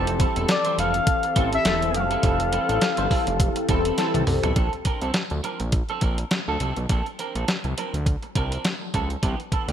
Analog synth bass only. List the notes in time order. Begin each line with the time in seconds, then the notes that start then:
Already playing: F1
0.37 E1
0.78 F1
1.36 A1
1.66 E1
1.94 F#1
2.23 F1
2.69 A1
2.98 G1
3.27 F1
3.69 E1
4.15 C2
4.27 C2
4.43 B1
4.56 A#1
5.02 C2
5.31 D2
5.60 A#1
6.02 A#1
6.48 D2
6.60 C2
6.77 B1
6.90 A#1
7.35 A#1
7.64 C2
7.94 D2
8.36 C2
8.94 C#2
9.23 C2
9.68 D2